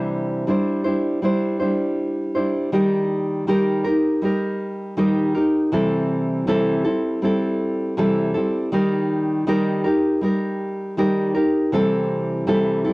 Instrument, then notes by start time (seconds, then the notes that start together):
nylon-string guitar
Already playing: C3 E3 G3 D4 E4 C5
0.47 G3 D4 E4 C5
0.84 G3 D4 E4 C5
1.22 G3 D4 E4 C5
1.59 G3 D4 E4 C5
2.35 G3 D4 E4 C5
2.72 D#3 G3 D#4 G4 A#4
3.47 D#3 G3 D#4 G4 A#4
3.84 D#4 G4 A#4
4.22 G3 D#4 G4 A#4
4.97 D#3 G3 D#4 G4 A#4
5.35 D#4 G4 A#4
5.72 C3 E3 G3 C4 E4 A4
6.47 C3 E3 G3 C4 E4 A4
6.85 G3 C4 E4 A4
7.22 G3 C4 E4 A4
7.97 C3 E3 G3 C4 E4 A4
8.34 G3 C4 E4 A4
8.72 D#3 G3 D#4 G4 A#4
9.47 D#3 G3 D#4 G4 A#4
9.84 D#4 G4 A#4
10.21 G3 D#4 G4 A#4
10.97 D#3 G3 D#4 G4 A#4
11.34 D#4 G4 A#4
11.72 C3 E3 G3 C4 E4 A4
12.47 C3 E3 G3 C4 E4 A4
12.85 G3 C4 E4 A4